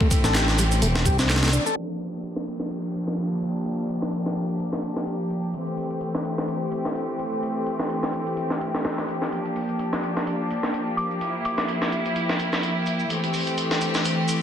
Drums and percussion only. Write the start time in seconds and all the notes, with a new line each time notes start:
0.01 kick
0.11 kick, closed hi-hat, shaker
0.24 snare, shaker
0.35 snare, clap, closed hi-hat, shaker
0.48 snare
0.58 closed hi-hat, shaker
0.71 closed hi-hat, shaker
0.82 closed hi-hat, shaker
0.96 snare
1.06 kick, closed hi-hat, shaker
1.19 snare, shaker
1.29 snare, clap, closed hi-hat, shaker
1.36 snare, closed hi-hat
1.43 snare, closed hi-hat
1.48 snare, closed hi-hat
1.53 closed hi-hat, shaker
1.66 shaker
1.76 closed hi-hat
1.89 closed hi-hat
2.00 open hi-hat, shaker
2.13 closed hi-hat, shaker
2.23 closed hi-hat, shaker
2.36 snare
2.47 closed hi-hat, shaker
2.60 snare, shaker
2.70 closed hi-hat
2.94 closed hi-hat, shaker
3.08 snare, shaker
3.18 closed hi-hat, shaker
3.42 closed hi-hat, shaker
3.55 shaker
3.65 closed hi-hat, shaker
3.89 closed hi-hat, shaker
4.02 snare, shaker
4.12 closed hi-hat, shaker
4.26 snare
4.36 closed hi-hat, shaker
4.49 closed hi-hat, shaker
4.59 closed hi-hat, shaker
4.73 snare
4.83 closed hi-hat, shaker
4.96 snare, shaker
5.07 closed hi-hat, shaker
5.30 closed hi-hat, shaker
5.43 shaker
5.54 closed hi-hat, shaker
5.67 closed hi-hat
5.77 open hi-hat, shaker
5.90 closed hi-hat, shaker
6.01 closed hi-hat, shaker
6.15 snare
6.25 closed hi-hat, shaker
6.38 snare, shaker
6.48 closed hi-hat, shaker
6.72 closed hi-hat, shaker
6.85 snare, shaker
6.95 closed hi-hat, shaker
7.19 closed hi-hat, shaker
7.32 shaker
7.43 closed hi-hat, shaker
7.66 closed hi-hat, shaker
7.79 snare, shaker
7.90 closed hi-hat, shaker
8.03 snare
8.13 closed hi-hat, shaker
8.27 closed hi-hat, shaker
8.37 closed hi-hat, shaker
8.50 snare
8.61 closed hi-hat, shaker
8.74 snare, shaker
8.85 snare, closed hi-hat, shaker
8.98 snare
9.09 closed hi-hat, shaker
9.22 snare, shaker
9.32 closed hi-hat, shaker
9.46 closed hi-hat
9.56 open hi-hat, shaker
9.69 closed hi-hat, shaker
9.79 closed hi-hat, shaker
9.93 snare
10.03 closed hi-hat, shaker
10.17 snare, shaker
10.27 closed hi-hat, shaker
10.51 closed hi-hat, shaker
10.63 snare, shaker
10.74 closed hi-hat, shaker
10.98 closed hi-hat, shaker
11.11 shaker
11.21 closed hi-hat, shaker
11.45 closed hi-hat, shaker
11.58 snare, shaker
11.69 closed hi-hat, shaker
11.82 snare
11.92 closed hi-hat, shaker
12.05 closed hi-hat, shaker
12.15 closed hi-hat, shaker
12.29 snare
12.39 closed hi-hat, shaker
12.52 snare, shaker
12.63 closed hi-hat, shaker
12.86 closed hi-hat, shaker
13.00 shaker
13.10 closed hi-hat, shaker
13.24 closed hi-hat
13.34 open hi-hat, shaker
13.47 closed hi-hat, shaker
13.58 closed hi-hat, shaker
13.71 snare
13.81 closed hi-hat, shaker
13.94 snare, shaker
14.05 closed hi-hat, shaker
14.28 closed hi-hat, shaker